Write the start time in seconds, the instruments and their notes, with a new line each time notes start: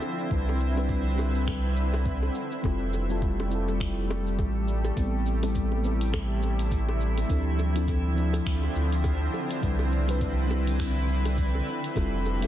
Already playing: ambient pad D3 F3 C4 E4, fm electric piano F3 C4 D4 E4 A4
0.02 high bongo, shaker
0.19 shaker
0.30 sub bass C2, ambient pad D3 B4, fm electric piano G3 C4 D4 E4 B4, kick, shaker
0.49 high bongo
0.60 shaker
0.75 fm electric piano G3 C4 D4 E4 B4, high bongo, shaker
0.89 kick, shaker
1.15 fm electric piano G3 C4 D4, shaker
1.19 fm electric piano E4 B4, high bongo
1.35 shaker
1.47 finger snap, kick, high bongo, shaker
1.77 shaker
1.93 high bongo, shaker
2.06 kick, shaker
2.23 high bongo
2.35 ambient pad G3 A3, shaker
2.52 shaker
2.63 sub bass F1, fm electric piano G3 C4 E4 F4 A4, kick, high bongo, shaker
2.93 high bongo, shaker
3.09 fm electric piano G3 C4 E4 F4 A4, shaker
3.22 kick, shaker
3.40 high bongo
3.49 fm electric piano G3 C4 E4, shaker
3.53 fm electric piano F4 A4
3.68 high bongo, shaker
3.80 finger snap, kick, shaker
4.10 high bongo, shaker
4.27 shaker
4.39 sub bass A1, kick, high bongo, shaker
4.68 shaker
4.85 high bongo, shaker
4.96 sub bass A1, ambient pad C3 E4, fm electric piano G3 B3 C4 E4 A4, kick, open hi-hat, high bongo, shaker
5.26 shaker
5.41 fm electric piano G3 B3 C4 E4 A4, open hi-hat, high bongo, shaker
5.55 kick, open hi-hat, shaker
5.72 high bongo
5.81 fm electric piano G3 B3 C4, shaker
5.86 fm electric piano E4 A4
6.01 open hi-hat, shaker
6.13 finger snap, kick, open hi-hat, high bongo, shaker
6.43 high bongo, shaker
6.59 open hi-hat, shaker
6.71 kick, open hi-hat, shaker
6.89 high bongo
7.01 shaker
7.18 open hi-hat, high bongo, shaker
7.28 sub bass D2, ambient pad D3 F3 C4, fm electric piano F3 C4 D4 E4 A4, kick, open hi-hat, shaker
7.59 high bongo, shaker
7.74 fm electric piano F3 C4 D4 E4 A4, open hi-hat, shaker
7.88 kick, open hi-hat, high bongo, shaker
8.14 fm electric piano F3 C4 D4, shaker
8.19 fm electric piano E4 A4
8.33 open hi-hat, high bongo, shaker
8.46 sub bass D2, finger snap, kick, open hi-hat, shaker
8.63 high bongo
8.76 sub bass D2, shaker
8.92 open hi-hat, shaker
9.04 kick, open hi-hat, high bongo, shaker
9.34 high bongo, shaker
9.51 open hi-hat, shaker
9.61 sub bass C2, fm electric piano G3 C4 D4 E4 B4, ambient pad E4 B4, kick, open hi-hat, shaker
9.79 high bongo
9.92 shaker
10.07 fm electric piano G3 C4 D4 E4 B4, open hi-hat, high bongo, shaker
10.21 kick, open hi-hat, shaker
10.47 fm electric piano G3 C4 D4, high bongo, shaker
10.52 fm electric piano E4 B4
10.67 open hi-hat, shaker
10.79 finger snap, kick, open hi-hat, high bongo, shaker
11.09 shaker
11.25 open hi-hat, high bongo, shaker
11.38 kick, open hi-hat, shaker
11.55 high bongo
11.67 ambient pad F3 A3 G4 E5, shaker
11.84 open hi-hat, shaker
11.95 sub bass F1, fm electric piano G3 C4 E4 F4 A4, kick, open hi-hat, high bongo, shaker
12.26 high bongo, shaker
12.41 fm electric piano G3 C4 E4 F4 A4, open hi-hat, shaker